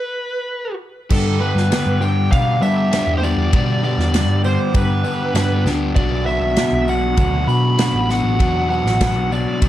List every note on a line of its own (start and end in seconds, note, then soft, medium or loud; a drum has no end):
0.00 0.75 B4 medium
1.10 1.40 G2 medium
1.10 1.53 G2 medium
1.10 1.40 D3 loud
1.10 1.41 G3 medium
1.10 1.41 B3 medium
1.10 1.41 D4 loud
1.10 1.40 G4 loud
1.10 1.39 A4 medium
1.10 kick loud
1.10 crash loud
1.40 1.71 G2 medium
1.40 1.70 D3 medium
1.40 1.71 G3 medium
1.40 1.72 B3 medium
1.40 1.72 D4 medium
1.40 1.71 G4 medium
1.40 2.03 B4 medium
1.40 tambourine soft
1.55 1.69 G2 medium
1.55 snare soft
1.71 2.00 G2 medium
1.71 2.00 D3 medium
1.71 2.01 G3 medium
1.71 2.01 B3 medium
1.71 2.01 D4 medium
1.71 2.00 G4 medium
1.71 snare loud
1.71 ride bell medium
1.71 tambourine medium
1.86 2.28 G2 medium
2.00 2.30 G2 loud
2.00 2.30 D3 medium
2.00 2.31 G3 loud
2.00 2.32 B3 medium
2.00 2.32 D4 loud
2.00 2.31 G4 medium
2.00 2.29 G5 medium
2.00 tambourine medium
2.31 2.61 G2 medium
2.31 2.60 B2 medium
2.31 2.61 D3 medium
2.31 2.62 G3 medium
2.31 2.62 B3 medium
2.31 2.63 D4 medium
2.31 2.61 G4 medium
2.31 2.62 F5 loud
2.31 kick loud
2.31 ride bell medium
2.31 tambourine medium
2.62 2.90 G2 medium
2.62 2.91 D3 medium
2.62 3.04 G3 medium
2.62 2.91 G3 medium
2.62 2.92 B3 loud
2.62 2.93 D4 loud
2.62 2.91 G4 loud
2.62 3.12 E5 loud
2.62 tambourine medium
2.92 3.21 G2 medium
2.92 3.21 D3 medium
2.92 3.22 G3 medium
2.92 3.23 B3 medium
2.92 3.23 D4 medium
2.92 3.22 G4 medium
2.92 snare loud
2.92 ride bell medium
2.92 tambourine loud
3.07 3.35 E2 medium
3.18 3.23 C5 medium
3.22 3.51 G2 medium
3.22 3.52 D3 medium
3.22 3.52 G3 medium
3.22 3.53 B3 loud
3.22 3.53 D4 medium
3.22 3.52 G4 medium
3.22 3.83 D5 medium
3.22 tambourine medium
3.37 3.55 E2 medium
3.52 3.82 G2 loud
3.52 3.95 B2 loud
3.52 3.82 D3 medium
3.52 3.82 G3 loud
3.52 3.83 B3 loud
3.52 3.84 D4 loud
3.52 3.82 G4 loud
3.52 kick loud
3.52 ride bell medium
3.83 4.12 G2 medium
3.83 4.13 D3 medium
3.83 4.13 G3 medium
3.83 4.14 B3 medium
3.83 4.14 D4 medium
3.83 4.12 G4 medium
3.83 4.40 D5 medium
3.83 tambourine soft
3.98 4.28 E2 medium
3.98 snare soft
4.13 4.42 G2 medium
4.13 4.43 D3 medium
4.13 4.43 G3 medium
4.13 4.44 B3 loud
4.13 4.44 D4 medium
4.13 4.43 G4 medium
4.13 snare loud
4.13 ride bell medium
4.13 tambourine loud
4.28 4.56 G2 medium
4.43 4.72 G2 loud
4.43 4.72 D3 loud
4.43 4.73 G3 loud
4.43 4.74 B3 loud
4.43 4.74 D4 loud
4.43 4.74 G4 loud
4.43 4.76 C5 medium
4.43 tambourine medium
4.73 5.03 G2 medium
4.73 5.02 G2 loud
4.73 5.03 D3 medium
4.73 5.03 G3 medium
4.73 5.04 B3 medium
4.73 5.05 D4 medium
4.73 5.04 G4 medium
4.73 5.63 B4 medium
4.73 kick loud
4.73 ride bell medium
4.73 tambourine medium
5.04 5.33 G2 medium
5.04 5.33 D3 medium
5.04 5.34 G3 medium
5.04 5.35 B3 loud
5.04 5.35 D4 loud
5.04 5.34 G4 loud
5.04 tambourine medium
5.34 5.66 G2 medium
5.34 5.63 G2 medium
5.34 5.64 D3 medium
5.34 5.65 G3 medium
5.34 5.66 B3 medium
5.34 5.66 D4 medium
5.34 5.65 G4 medium
5.34 snare loud
5.34 ride bell medium
5.34 tambourine loud
5.65 5.93 D2 medium
5.65 5.94 G2 medium
5.65 5.94 D3 medium
5.65 5.94 G3 medium
5.65 5.96 B3 medium
5.65 5.96 D4 medium
5.65 5.94 G4 loud
5.65 snare soft
5.65 tambourine medium
5.95 6.38 B1 loud
5.95 6.26 B2 medium
5.95 6.26 F#3 medium
5.95 6.27 B3 loud
5.95 6.27 D4 loud
5.95 6.28 F#4 loud
5.95 6.24 D5 medium
5.95 kick loud
5.95 ride bell medium
6.26 6.56 B2 medium
6.26 6.57 F#3 medium
6.26 6.57 B3 medium
6.26 6.57 D4 medium
6.26 6.58 F#4 medium
6.26 6.89 E5 medium
6.26 tambourine soft
6.41 6.55 B1 medium
6.57 6.86 B2 medium
6.57 6.86 F#3 medium
6.57 6.86 B3 medium
6.57 6.87 D4 loud
6.57 6.87 F#4 medium
6.57 snare loud
6.57 ride bell medium
6.57 tambourine loud
6.72 7.14 B1 medium
6.86 7.16 B2 loud
6.86 7.16 F#3 loud
6.86 7.16 B3 loud
6.86 7.17 D4 loud
6.86 7.17 F#4 medium
6.86 7.17 F#5 medium
6.86 tambourine medium
7.17 7.46 D2 loud
7.17 7.46 B2 medium
7.17 7.46 F#3 medium
7.17 7.46 B3 medium
7.17 7.47 D4 medium
7.17 7.48 F#4 loud
7.17 7.46 F#5 loud
7.17 kick loud
7.17 ride bell medium
7.17 tambourine medium
7.47 7.76 B2 medium
7.47 7.90 B2 medium
7.47 7.77 F#3 loud
7.47 7.77 B3 medium
7.47 7.77 D4 loud
7.47 7.78 F#4 loud
7.47 8.11 B5 loud
7.47 tambourine medium
7.77 8.08 B2 medium
7.77 8.08 F#3 medium
7.77 8.08 B3 medium
7.77 8.08 D4 medium
7.77 8.08 F#4 medium
7.77 snare loud
7.77 ride bell medium
7.77 tambourine loud
7.94 8.22 A1 medium
8.09 8.38 B2 medium
8.09 8.38 F#3 medium
8.09 8.38 B3 medium
8.09 8.38 D4 loud
8.09 8.38 F#4 medium
8.09 8.67 F#5 medium
8.09 snare soft
8.09 tambourine medium
8.24 8.40 A1 medium
8.39 8.82 E2 loud
8.39 8.68 B2 loud
8.39 8.68 F#3 loud
8.39 8.68 B3 loud
8.39 8.69 D4 loud
8.39 8.70 F#4 loud
8.39 kick loud
8.39 ride bell medium
8.39 tambourine soft
8.69 8.99 B2 medium
8.69 8.99 F#3 medium
8.69 9.00 B3 medium
8.69 9.00 D4 medium
8.69 9.00 F#4 medium
8.69 9.33 F#5 medium
8.69 tambourine soft
8.85 9.16 A1 medium
8.85 snare soft
9.00 9.29 B2 medium
9.00 9.30 F#3 medium
9.00 9.31 B3 medium
9.00 9.30 D4 loud
9.00 9.31 F#4 medium
9.00 kick medium
9.00 snare loud
9.00 ride bell medium
9.00 tambourine medium
9.16 9.44 B1 medium
9.30 9.60 B2 loud
9.30 9.60 F#3 loud
9.30 9.60 B3 loud
9.30 9.61 D4 loud
9.30 9.61 F#4 medium
9.30 9.69 D5 medium
9.30 tambourine medium
9.61 9.69 B1 loud
9.61 9.69 B2 medium
9.61 9.69 F#3 medium
9.61 9.69 B3 medium
9.61 9.69 D4 medium
9.61 9.69 F#4 medium
9.61 kick loud
9.61 ride bell medium
9.61 tambourine medium